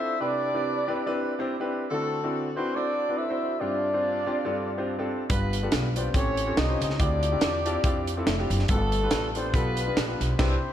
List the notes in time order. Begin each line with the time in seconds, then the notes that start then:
Already playing: C4 D4 E4 F4 A4 C5 E5
0.20 C3 C4 D4 E4 G4 B4 D5
0.54 C4 D4 E4 G4 B4
0.88 C4 D4 E4 G4 B4
1.06 C4 D4 E4 G4 B4
1.39 C4 D4 E4 G4 C5
1.60 C4 D4 E4 G4 B4
1.90 D3 A3 C4 D4 E4 F#4 A4
2.24 C4 D4 E4 F#4 A4
2.56 C4 D4 E4 F#4 B4 C5
2.75 C4 D4 E4 F#4 A4 C5 D5
3.09 C4 D4 E4 F#4 B4
3.16 E4 A4 C5 E5
3.30 C4 D4 E4 F#4 C5
3.59 G2 C4 D4 F4 G4 C5 D5
3.93 C4 D4 F4 G4 C5
4.26 C4 D4 F4 G4 D5
4.45 G2 C4 D4 F4 G4 A4
4.78 C4 D4 F4 G4 C5
4.99 C4 D4 F4 G4 A4
5.29 G1 G2 B3 D4 F4 G4 B4, kick, closed hi-hat
5.53 closed hi-hat
5.63 B3 D4 F4 G4 A4
5.72 B1, snare, closed hi-hat
5.96 B3 C4 D4 F4 G4 C5 D5, closed hi-hat
6.14 A1 A2 C4 C#4 F4 G4 A4 C#5, kick, closed hi-hat
6.37 closed hi-hat
6.47 C4 C#4 F4 G4 A4
6.57 C2 D#4 D#5, snare, closed hi-hat
6.69 C4 C#4 F4 G4 C5
6.81 C#2 D#4 D#5, snare, closed hi-hat
6.90 snare
6.99 D2 D3 C4 D4 E4 F4 G4 D5, kick, closed hi-hat
7.23 closed hi-hat
7.32 C4 D4 E4 F4 G4
7.41 E2, snare, closed hi-hat
7.66 C4 D4 E4 F4 G4 A5, closed hi-hat
7.84 F2 C4 D4 E4 F4 G4 F5, kick, closed hi-hat
8.07 closed hi-hat
8.17 C4 D4 E4 F4 A4
8.26 F1 E5, snare, closed hi-hat
8.39 C4 D4 E4 F4 G4
8.50 F#1, closed hi-hat
8.59 snare
8.68 G1 G2 A3 B3 D4 F4 G4 A4, kick, closed hi-hat
8.92 closed hi-hat
9.03 B3 D4 F4 G4 B4
9.11 A1, snare, closed hi-hat
9.35 B3 C4 D4 F4 G4 A4 C5, closed hi-hat
9.54 B1 B3 D4 F4 G4 A4 B4, kick, closed hi-hat
9.77 closed hi-hat
9.87 B3 D4 F4 G4 B4
9.96 A#1, snare, closed hi-hat
10.07 B3 D4 F4 G4 B4
10.20 B1 C4 E4 G4 C5, snare, closed hi-hat
10.39 C2 C3 C4 D4 E4 G4 B4, kick, snare, crash